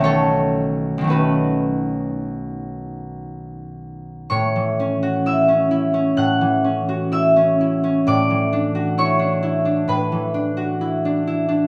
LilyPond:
<<
  \new Staff \with { instrumentName = "Harp" } { \time 4/4 \key a \major \tempo 4 = 64 << { <a' cis''>4 <fis' b'>2. | <cis'' cis'''>4 <e'' e'''>4 <fis'' fis'''>4 <e'' e'''>4 | <d'' d'''>4 <cis'' cis'''>4 <b' b''>2 | } \\ { r1 | a,16 e16 cis'16 fis'16 e'16 cis'16 e'16 cis'16 a,16 e16 cis'16 fis'16 e'16 cis'16 e'16 cis'16 | a,16 e16 d'16 fis'16 e'16 d'16 e'16 d'16 a,16 e16 d'16 fis'16 e'16 d'16 e'16 d'16 | } >> }
  \new Staff \with { instrumentName = "Harp" } { \time 4/4 \key a \major <b,, dis a b cis'>4 <b,, dis a cis'>2.~ | <b,, dis a cis'>1~ | <b,, dis a cis'>1 | }
>>